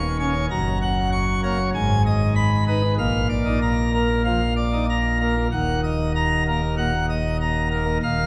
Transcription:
Already playing: D#1 D#2 C#6
0.20 C#4 C#5
0.51 F#1 F#2 A#5
0.82 F#5
1.12 C#6
1.43 A#3 C#5
1.75 G#1 G#2 G#5
2.06 D#5
2.36 B5
2.68 D#4 B4
2.99 A#1 A#2 F5
3.29 D5
3.46 D#4
3.62 A#5
3.94 A#3 A#4
4.25 F3 F5
4.57 D5
4.73 D#4
4.90 A#5
5.20 A#3 A#4
5.52 D#1 D#2 F#5
5.84 D#5
6.15 A#5
6.47 A#3 A#4
6.78 A#2 F#5
7.10 D#5
7.41 A#5
7.71 A#3 A#4
8.03 D#1 D#2 F5

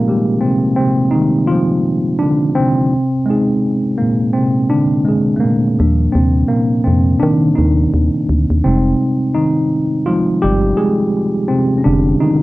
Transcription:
Already playing: A#2 D#3 F3 G#3 A#3 D#4 F4 G4 G#4
0.08 G3 G#3 G4
0.41 C3 C4
0.76 C4
0.80 C3
1.11 G3 G#3 D#4
1.15 D#3
1.47 F4
1.51 F3
2.19 D3 D4
2.55 C4
2.59 C3
3.26 G#3 C4
3.30 D#4 G#4
3.98 A#2 A#3
4.33 C4
4.37 C3
4.70 D3 D4
5.05 G#3 G#4
5.36 A3
5.40 A#2 A#3
5.79 D#2 F3 G3 D4
6.12 D#2 C3 C4
6.48 A#2 A#3
6.84 F2 C3 C4
7.20 D#3 D4
7.55 D#2 D#3 D#4
7.94 D#2
8.29 D2
8.50 D#2
8.64 F1 C3 G3 G#3 C4 D#4
9.34 D#3 D#4
10.06 F3 G3 G#3 D#4 F4
10.42 G1 G3 G4
10.77 G#3 G#4
11.48 C3 C4
11.78 C#4
11.84 F1 D3 D4
12.20 D#3 D#4

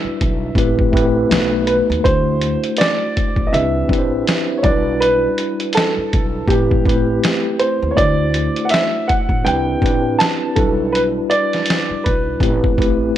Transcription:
Already playing: G3 D4 E4 F#4 B4 E5
0.05 muted upright bass stroke
0.21 B1, kick, closed hi-hat
0.55 A1 A3 C4 E4 G4 B4, kick, closed hi-hat
0.79 kick
0.92 A1 A3 C4 E4 G4 B4, kick
0.97 closed hi-hat
1.29 B1 A3 B3 D#4 F#4 B4, snare, closed hi-hat
1.67 B4, closed hi-hat
1.90 D#2, closed hi-hat
2.03 D2 A3 D4 E4 F#4 C5, kick, closed hi-hat
2.41 closed hi-hat
2.64 closed hi-hat
2.77 D5, closed hi-hat
2.81 snare
3.17 kick, closed hi-hat
3.36 A1, kick
3.47 D#5
3.51 C2 C4 D4 E4 G4 B4 E5, closed hi-hat
3.88 A1 C4 D4 E4 G4 B4, kick
3.93 closed hi-hat
3.99 C5
4.28 snare, closed hi-hat
4.58 C#5
4.62 B1 G3 D4 E4 F#4 B4 D5, kick, closed hi-hat
5.00 B4, closed hi-hat
5.38 closed hi-hat
5.60 closed hi-hat
5.73 A4, closed hi-hat
5.77 snare
5.97 muted upright bass stroke
6.13 B1, kick, closed hi-hat
6.48 A1 A3 C4 E4 G4 B4, kick, closed hi-hat
6.71 kick
6.84 A1 A3 C4 E4 G4 B4, kick
6.89 closed hi-hat
7.24 snare, closed hi-hat
7.59 C5, closed hi-hat
7.82 D#2
7.91 C#5
7.96 D2 A3 D4 E4 F#4 C5 D5, kick, closed hi-hat
8.34 closed hi-hat
8.56 closed hi-hat
8.65 F#5
8.69 E5, closed hi-hat
8.74 snare
9.08 F#5, kick, closed hi-hat
9.29 A1, kick
9.44 C2 C4 D4 E4 G4 B4 G5, closed hi-hat
9.81 A1 C4 D4 E4 G4 B4, kick
9.86 closed hi-hat
10.19 A5, snare, closed hi-hat
10.55 B1 G3 D4 E4 F#4 A4 B4, kick, closed hi-hat
10.92 B4, closed hi-hat
11.30 D5, closed hi-hat
11.53 snare, closed hi-hat
11.66 closed hi-hat
11.70 snare
11.90 muted upright bass stroke
12.04 B1 B4, kick, closed hi-hat
12.40 A1 A3 C4 E4 G4 B4, kick, closed hi-hat
12.64 kick
12.77 A1 A3 C4 E4 G4 B4, kick
12.82 closed hi-hat

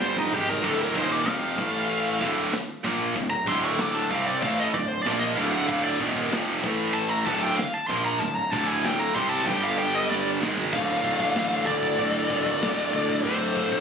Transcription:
Already playing: G1 G2 D3 G3
0.01 C5, snare
0.16 D#4, high tom
0.31 G#1 G#2 D#3 G#3 G4, mid tom
0.48 A#4, floor tom
0.63 D1 D2 A2 D3 A4, kick, crash
0.82 A#4
0.95 D#1 D#2 A#2 D#3 C5, kick, open hi-hat
1.12 D5
1.26 F1 F2 C3 F3 F5, snare, open hi-hat
1.57 A1 A2 E3 A3, kick, open hi-hat
1.90 open hi-hat
2.21 D1 D2 A2 D3, kick, open hi-hat
2.52 snare, open hi-hat
2.84 A#1 A#2 F3 A#3, kick, open hi-hat
3.16 D1 D2 A2, kick, open hi-hat
3.30 A#5
3.47 D1 D2 A2 D3 C6, kick, open hi-hat
3.65 C#6
3.78 D6, snare, open hi-hat
3.94 A5
4.10 C2 C3 G3 C4 F5, kick, open hi-hat
4.27 D5
4.42 A1 A2 E3 A3 F5, kick, open hi-hat
4.60 D#5
4.73 D1 D2 A2 D5, kick, open hi-hat
4.88 C5
5.03 A#1 A#2 F3 A#3 D5, open hi-hat
5.07 snare
5.20 D#5
5.35 D1 D2 A2 D3 F5, kick, open hi-hat
5.52 F#5
5.67 D1 D2 A2 D3 F5, kick, open hi-hat
5.83 D5
6.00 D#1 D#2 A#2 D#3, kick, open hi-hat
6.30 F1 F2 C3 F3, snare, open hi-hat
6.63 A1 A2 E3 A3, kick, open hi-hat
6.94 A5, open hi-hat
7.09 A#5
7.26 D1 D2 A2 D3 A5, kick, open hi-hat
7.42 G5
7.58 F5, snare, open hi-hat
7.74 A5
7.87 A#1 A#2 F3 C6, kick, open hi-hat
7.91 A#3
8.05 A#5
8.20 D1 D2 A2 A5, kick, open hi-hat
8.36 A#5
8.52 D1 D2 A2 D3 A5, kick, open hi-hat
8.68 G#5
8.85 G5, snare, open hi-hat
8.99 A#5
9.15 C2 C3 G3 C4 C6, kick, open hi-hat
9.30 A5
9.46 G1 G2 D3 G3 G5, kick, open hi-hat
9.64 F5
9.79 G5, open hi-hat
9.95 D#5
10.10 D5, snare
10.40 G#1 G#2 D#3 G#3, snare
10.57 floor tom
10.72 D1 D2 A2 D3 D5 F5, kick, crash
11.04 D1, kick
11.20 kick
11.35 A1, snare, crash
11.66 D2 A4 D5, kick
11.83 kick
11.99 D1 D2 A2 D3, kick, crash
12.29 D1 D2 A2 D3, kick
12.46 kick
12.62 D1 D2 A2 D3, snare, crash
12.93 D2, kick
13.09 kick
13.24 D1 D2 A2 D3 A4 C5, kick, crash
13.57 kick
13.72 kick

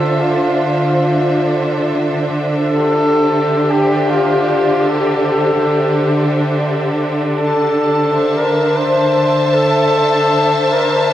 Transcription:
Already playing: D3 D4 F4 A4 C5 E5
0.20 F4
2.54 A4
2.73 G4
3.71 G4
4.10 F4
4.88 A4
7.20 A4
7.43 A5
7.98 C5
8.14 E5
8.37 A#4
8.76 C5
9.54 A4
10.72 A#4

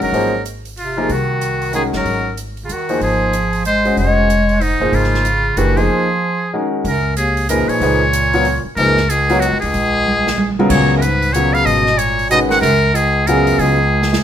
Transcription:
Already playing: D#3 G#3 C#4 F#4 A#4
0.00 G1 F#3 A#4, open hi-hat
0.12 G#1 F3 A#3 D#4 G#4 C5, open hi-hat
0.46 closed hi-hat
0.65 open hi-hat
0.77 C3 F4, open hi-hat
0.97 F3 A#3 D#4 G#4 A#4
1.09 C2 D#3 F#4, open hi-hat
1.41 closed hi-hat
1.62 open hi-hat
1.73 D#3 G#3 C#4 F#4 G#4 A#4, closed hi-hat
1.92 G1 F#3 A#4, snare
2.05 G#1, open hi-hat
2.37 closed hi-hat
2.57 open hi-hat
2.64 C#3 F4
2.69 D#2 D#3 F#4, closed hi-hat
2.89 F3 A#3 D#4 G#4 C5, open hi-hat
3.01 G#1 F3 G#4, open hi-hat
3.33 closed hi-hat
3.53 open hi-hat
3.65 G#3 C5, closed hi-hat
3.85 G#3 C#4 F#4 C5 D#5, open hi-hat
3.97 F1 G#3 C#5, open hi-hat
4.30 closed hi-hat
4.49 open hi-hat
4.61 G#2 D#4, open hi-hat
4.80 F#1 F3 A#3 D#4 G#4 C5
4.92 G#1 C#3 F4, open hi-hat
5.04 snare
5.14 snare
5.25 closed hi-hat
5.57 F#1 D#3 E3 A3 D4 F#4 G4 B4, closed hi-hat
5.76 F3 A#3 D#4 G#4 C5, open hi-hat
6.54 D#3 G#3 C#4 F#4 A#4
6.84 C#2 F#2 A#4, open hi-hat
7.17 D#2 G#4, closed hi-hat
7.37 open hi-hat
7.49 F#2 A#2 F3 D#4 G#4 A#4 B4, closed hi-hat
7.68 A#2 C#5, muted upright bass stroke, open hi-hat
7.80 C#2 F3 A#3 D#4 G#4 B4, open hi-hat
8.13 closed hi-hat
8.33 F#3 B3 F4 A#4 C#5, open hi-hat
8.45 open hi-hat
8.65 muted upright bass stroke
8.76 C#2 F#2 F3 A#3 D#4 G#4 A#4 B4, open hi-hat
8.97 snare
9.09 C#2 G#4, closed hi-hat
9.30 F#3 B3 F4 A#4 C#5, open hi-hat
9.40 C#2 F#4, closed hi-hat
9.52 F#2
9.60 C#2 D2 G#4, open hi-hat
9.73 A#1, open hi-hat
10.06 high tom
10.27 snare
10.38 high tom
10.59 C#3 F#3 B3 F4 A#4, high tom
10.69 C#2 A#2 C#5, kick, crash
10.97 F#2 G#2 A#4
11.02 B4, closed hi-hat
11.22 open hi-hat
11.33 A#2 C#3 F#3 B3 F4 A#4 C#5, closed hi-hat
11.53 C#3 F5, open hi-hat
11.64 G#1 B2 D#5, open hi-hat
11.86 snare
11.97 A#2 C#5, closed hi-hat
12.19 open hi-hat
12.29 B2 D#3 G#3 C#4 F#4 B4 D#5, closed hi-hat
12.49 D#3 F#5, snare, open hi-hat
12.60 C#2 F#2 A#4, open hi-hat
12.94 C#2 G#4, closed hi-hat
13.27 F#2 C#3 F#3 B3 F4 G#4 A#4, closed hi-hat
13.47 open hi-hat
13.58 C#2 G#4, open hi-hat
14.02 snare
14.13 snare

